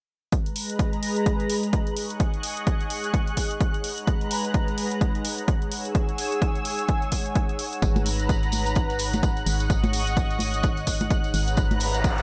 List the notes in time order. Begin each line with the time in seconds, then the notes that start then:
0.32 G#3 D#4 B4 A#5 F#6, kick, closed hi-hat
0.42 G#4
0.46 closed hi-hat
0.56 C#5, open hi-hat
0.70 closed hi-hat
0.79 kick, closed hi-hat
0.93 closed hi-hat
1.03 open hi-hat
1.07 F#5
1.16 closed hi-hat
1.26 kick, closed hi-hat
1.40 closed hi-hat
1.50 open hi-hat
1.63 closed hi-hat
1.73 kick, closed hi-hat
1.87 closed hi-hat
1.96 G#3 G#4 D#5 C#6, open hi-hat
2.10 closed hi-hat
2.20 kick, closed hi-hat
2.34 closed hi-hat
2.43 open hi-hat
2.57 closed hi-hat
2.67 kick, closed hi-hat
2.81 closed hi-hat
2.90 open hi-hat
3.04 closed hi-hat
3.14 kick, closed hi-hat
3.27 closed hi-hat
3.37 kick, open hi-hat
3.51 closed hi-hat
3.60 kick, closed hi-hat
3.74 closed hi-hat
3.84 G#3 B4 A#5, open hi-hat
3.98 closed hi-hat
4.07 kick, closed hi-hat
4.21 closed hi-hat
4.31 open hi-hat
4.45 closed hi-hat
4.54 kick, closed hi-hat
4.68 closed hi-hat
4.78 open hi-hat
4.91 closed hi-hat
5.01 kick, closed hi-hat
5.15 closed hi-hat
5.25 open hi-hat
5.38 closed hi-hat
5.48 kick, closed hi-hat
5.62 closed hi-hat
5.71 G#3 G#4 C#5 G#5 E6, open hi-hat
5.85 closed hi-hat
5.95 kick, closed hi-hat
6.09 closed hi-hat
6.18 open hi-hat
6.32 closed hi-hat
6.42 kick, closed hi-hat
6.55 closed hi-hat
6.65 open hi-hat
6.79 closed hi-hat
6.88 kick, closed hi-hat
7.02 closed hi-hat
7.12 kick, open hi-hat
7.26 closed hi-hat
7.35 kick, closed hi-hat
7.49 closed hi-hat
7.59 open hi-hat
7.73 closed hi-hat
7.82 G#1 B4 A#5 F#6, kick, closed hi-hat, tambourine
7.96 closed hi-hat, tambourine, high conga
8.06 open hi-hat, tambourine
8.20 closed hi-hat, tambourine
8.29 kick, closed hi-hat, tambourine
8.43 closed hi-hat, tambourine
8.52 open hi-hat, tambourine, high conga
8.66 closed hi-hat, tambourine
8.75 kick, closed hi-hat, tambourine
8.90 closed hi-hat, tambourine
8.99 open hi-hat, tambourine
9.13 closed hi-hat, tambourine, high conga
9.23 kick, closed hi-hat, tambourine
9.37 closed hi-hat, tambourine
9.46 G#1 D#5 C#6, open hi-hat, tambourine
9.60 closed hi-hat, tambourine
9.70 kick, closed hi-hat, tambourine
9.84 closed hi-hat, tambourine, high conga
9.93 open hi-hat, tambourine
10.07 closed hi-hat, tambourine
10.17 kick, closed hi-hat, tambourine
10.30 closed hi-hat, tambourine
10.39 open hi-hat, tambourine, high conga
10.54 closed hi-hat, tambourine
10.63 kick, closed hi-hat, tambourine
10.77 closed hi-hat, tambourine
10.87 kick, open hi-hat, tambourine
11.00 closed hi-hat, tambourine, high conga
11.10 kick, closed hi-hat, tambourine
11.24 closed hi-hat, tambourine
11.34 G#1 B4 A#5, open hi-hat, tambourine
11.48 closed hi-hat, tambourine
11.57 kick, closed hi-hat, tambourine, riser
11.71 closed hi-hat, tambourine, high conga
11.80 open hi-hat, tambourine
11.94 closed hi-hat, tambourine
12.04 kick, closed hi-hat, tambourine
12.18 closed hi-hat, tambourine